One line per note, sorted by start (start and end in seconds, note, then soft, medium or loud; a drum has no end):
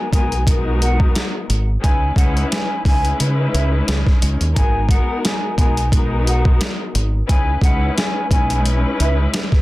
0.11 1.11 B1 loud
0.11 0.44 G#3 loud
0.11 0.44 B3 medium
0.11 0.44 D#4 medium
0.11 0.45 F#4 medium
0.11 0.45 A#4 medium
0.11 0.44 G#5 medium
0.11 kick medium
0.11 closed hi-hat medium
0.32 closed hi-hat medium
0.46 1.57 G#3 loud
0.46 1.57 B3 medium
0.46 1.58 D#4 loud
0.46 1.58 F#4 loud
0.46 1.58 A#4 loud
0.46 kick medium
0.46 closed hi-hat loud
0.82 0.98 F#5 medium
0.82 closed hi-hat medium
1.00 kick loud
1.15 snare loud
1.15 closed hi-hat medium
1.50 1.76 G#1 medium
1.50 closed hi-hat medium
1.81 2.10 C#2 loud
1.81 2.14 G#3 loud
1.81 2.14 C#4 medium
1.81 2.15 D#4 medium
1.81 2.15 E4 medium
1.81 2.15 B4 loud
1.81 2.14 G#5 loud
1.81 kick loud
1.81 closed hi-hat medium
2.16 2.43 C#2 loud
2.16 2.80 G#3 loud
2.16 2.80 C#4 medium
2.16 2.81 D#4 medium
2.16 2.81 E4 loud
2.16 2.82 B4 loud
2.16 2.48 F#5 medium
2.16 kick medium
2.16 closed hi-hat medium
2.37 closed hi-hat soft
2.51 2.82 G#5 medium
2.51 snare loud
2.51 closed hi-hat medium
2.85 3.12 C#2 medium
2.85 4.44 G#3 loud
2.85 4.44 C#4 medium
2.85 4.44 D#4 medium
2.85 4.45 E4 medium
2.85 4.45 B4 loud
2.85 3.17 G#5 medium
2.85 kick medium
2.85 open hi-hat medium
3.05 closed hi-hat medium
3.20 3.46 C#3 loud
3.20 closed hi-hat loud
3.54 3.80 C#2 medium
3.54 3.70 E5 medium
3.54 closed hi-hat medium
3.88 4.02 C#2 loud
3.88 snare loud
3.88 closed hi-hat medium
4.07 kick medium
4.07 snare soft
4.22 4.36 C#2 loud
4.22 closed hi-hat medium
4.41 4.53 D#2 medium
4.41 closed hi-hat soft
4.55 4.97 G#1 loud
4.55 4.87 G#3 loud
4.55 4.87 B3 medium
4.55 4.88 D#4 medium
4.55 4.88 F#4 medium
4.55 4.88 A#4 loud
4.55 4.87 G#5 loud
4.55 kick loud
4.55 closed hi-hat medium
4.89 5.53 G#3 medium
4.89 5.53 B3 loud
4.89 5.54 D#4 medium
4.89 5.54 F#4 medium
4.89 5.54 A#4 loud
4.89 5.21 F#5 medium
4.89 kick medium
4.89 closed hi-hat medium
5.25 5.55 G#5 medium
5.25 snare loud
5.25 closed hi-hat medium
5.56 6.57 B1 medium
5.56 5.89 G#3 medium
5.56 5.89 B3 medium
5.56 5.90 D#4 medium
5.56 5.90 F#4 medium
5.56 5.90 A#4 medium
5.56 5.89 G#5 medium
5.56 kick medium
5.56 closed hi-hat medium
5.77 closed hi-hat medium
5.91 7.02 G#3 loud
5.91 7.03 B3 medium
5.91 7.03 D#4 loud
5.91 7.03 F#4 medium
5.91 7.04 A#4 loud
5.91 kick medium
5.91 closed hi-hat loud
6.27 6.44 F#5 medium
6.27 closed hi-hat medium
6.45 kick loud
6.61 snare loud
6.61 closed hi-hat medium
6.95 7.21 G#1 medium
6.95 closed hi-hat medium
7.27 7.55 C#2 loud
7.27 7.59 G#3 loud
7.27 7.60 C#4 medium
7.27 7.60 D#4 medium
7.27 7.60 E4 medium
7.27 7.61 B4 loud
7.27 7.60 G#5 loud
7.27 kick loud
7.27 closed hi-hat medium
7.61 7.88 C#2 loud
7.61 8.26 G#3 loud
7.61 8.26 C#4 loud
7.61 8.26 D#4 medium
7.61 8.27 E4 loud
7.61 8.27 B4 loud
7.61 7.94 F#5 medium
7.61 kick medium
7.61 closed hi-hat medium
7.97 8.28 G#5 medium
7.97 snare loud
7.97 closed hi-hat medium
8.31 8.83 B1 medium
8.31 9.62 G#3 loud
8.31 9.62 C#4 medium
8.31 9.62 D#4 medium
8.31 9.62 E4 medium
8.31 9.62 B4 loud
8.31 8.62 G#5 medium
8.31 kick medium
8.31 closed hi-hat medium
8.50 closed hi-hat medium
8.66 closed hi-hat medium
9.00 9.26 C#2 medium
9.00 9.16 E5 medium
9.00 closed hi-hat medium
9.34 snare loud
9.34 closed hi-hat medium
9.52 kick medium
9.52 snare soft